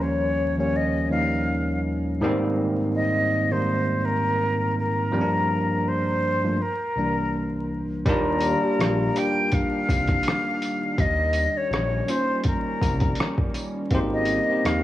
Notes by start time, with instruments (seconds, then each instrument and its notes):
Already playing: tine electric piano D#2 F3 G3 A#3 C#4
0.03 flute C#5
0.57 tine electric piano D#2 F3 G3 A#3 C#4, flute C#5
0.76 flute D#5
1.09 tine electric piano D#2 F3 G3 A#3 D#4, flute F5
2.21 tine electric piano G#2 D#3 G3 A#3 C4
2.95 flute D#5
3.51 tine electric piano G#2 D#3 G3 A#3 D#4, flute C5
4.05 flute A#4
4.79 flute A#4
5.11 tine electric piano G2 F3 G3 A#3 C4
5.21 tine electric piano D4
5.88 flute C5
6.43 tine electric piano G2 F3 A3 A#3 F4
6.62 flute A#4
6.96 tine electric piano C2 E3 G3 A#3 D4
8.06 analog synth bass D#2, ambient pad D#3 G3 D4, tine electric piano G3 A#3 D4 F4, flute A#4, kick, closed hi-hat
8.41 closed hi-hat, tambourine
8.61 tine electric piano G3 A#3 D4 G4
8.79 analog synth bass A#1, cross-stick, closed hi-hat
9.14 tine electric piano G3 A#3 D4 G4, flute G5, closed hi-hat, tambourine
9.52 flute F5, kick, closed hi-hat
9.89 analog synth bass C2, kick, closed hi-hat, tambourine
10.08 kick, closed hi-hat
10.23 closed hi-hat
10.28 cross-stick
10.62 closed hi-hat, tambourine
10.98 analog synth bass D#2, ambient pad C#4, flute D#5, kick, closed hi-hat
11.33 closed hi-hat, tambourine
11.57 flute C#5
11.70 analog synth bass A#1, cross-stick, closed hi-hat
12.06 tine electric piano G3 A#3 C#4 F4, flute C5, closed hi-hat, tambourine
12.44 flute A#4, kick, closed hi-hat
12.81 analog synth bass C2, kick, closed hi-hat, tambourine
13.00 kick, closed hi-hat
13.15 closed hi-hat
13.20 cross-stick
13.38 kick
13.54 closed hi-hat, tambourine
13.90 analog synth bass G#1, ambient pad C3 G#3, tine electric piano A#3 C4 D#4 G4, flute C5, kick, closed hi-hat
14.13 flute D#5
14.25 closed hi-hat, tambourine
14.49 tine electric piano A#3 C4 D#4 G4
14.64 analog synth bass D#2, flute F5, cross-stick, closed hi-hat